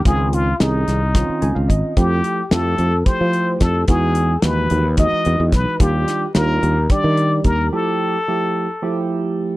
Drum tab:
HH |xxxxxxx|xxxxxxx|xxxxxxx|xxxxxxx|
SD |--ooo--|--o---o|--o---o|-oo----|
BD |o---o-o|o---o-o|o---o-o|o---o-o|

HH |-------|
SD |-------|
BD |-------|